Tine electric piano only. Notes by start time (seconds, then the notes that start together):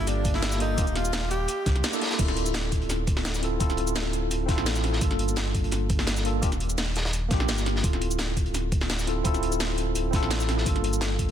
Already playing: A#3 D4 F4 A4
0.59 A#3 D4 F4 A4
0.77 A#3 D4 F4 G4
1.92 A#3 D4 E4 A4
2.17 C4 E4 F4
2.22 A4
3.41 C4 E4 F4 A4
3.59 C4 E4 F4 A4
4.46 C4 E4 F4
4.51 A4
4.99 A#3 D4 F4
5.05 A4
6.24 A#3 D4 F4 A4
6.41 A#3 D4 F4 G4
7.29 A#3 D4 F4
7.34 G4
7.81 C4 E4 F4
7.86 A4
9.06 C4 E4 F4 A4
9.24 C4 E4 F4 A4
10.11 C4 E4 F4
10.16 A4
10.64 A#3 D4 F4
10.69 A4